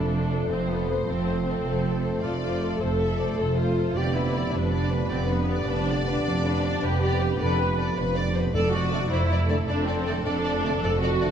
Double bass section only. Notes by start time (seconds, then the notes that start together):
Already playing: F1
0.50 F1
1.08 F1
1.66 F1
2.23 F1
2.81 F1
3.38 F1
3.96 F1
4.54 F1
5.10 F1
5.68 F1
6.25 F1
6.83 F1
7.40 F1
7.97 F1
8.54 F1
9.12 F1
9.69 F1
10.26 F1
10.83 F1